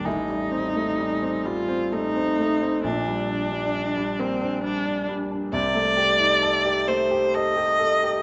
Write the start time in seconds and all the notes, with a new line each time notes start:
0.05 A1 A2 D#4
0.29 G3
0.51 C4
0.75 A3
0.98 G3
1.22 C4
1.45 G3 F4
1.68 C4
1.92 A3 D#4
2.16 C4
2.39 A3
2.61 C4
2.84 A#1 A#2 D4
3.07 G3
3.29 D4
3.52 G3
3.75 D4
3.97 G3
4.19 A#3 C4
4.41 D4
4.64 G3 D4
4.86 D4
5.08 G3
5.31 D4
5.53 C2 C3 D5
5.75 A3
5.97 G4
6.20 D#4
6.43 A4
6.65 G4
6.88 A3 C5
7.11 G4
7.34 A4 D#5
7.57 G4
7.79 A4
8.03 G4